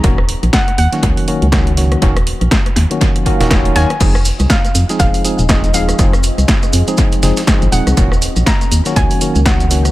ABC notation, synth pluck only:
X:1
M:4/4
L:1/8
Q:"Swing 16ths" 1/4=121
K:Ebdor
V:1 name="Synth pluck"
b z g g4- g- | g6 z a- | a z f2 f2 e f- | f6- f g- |
g2 b2 a2 g2 |]